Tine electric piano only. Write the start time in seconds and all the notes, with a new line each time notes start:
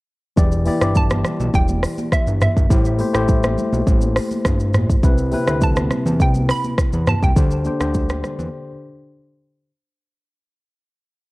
0.36 E3 E4 G4 D5
0.65 E3 E4 G4 D5
0.81 E3 E4 G4 D5
2.69 A3 E4 G4 C5
2.98 A3 E4 G4 C5
3.13 A3 E4 G4 C5
5.02 C3 C4 E4 B4
5.31 C3 C4 E4 B4
5.47 C3 C4 E4 B4
7.35 D3 D4 G4 C5
7.64 D3 D4 G4 C5
7.79 D3 D4 G4 C5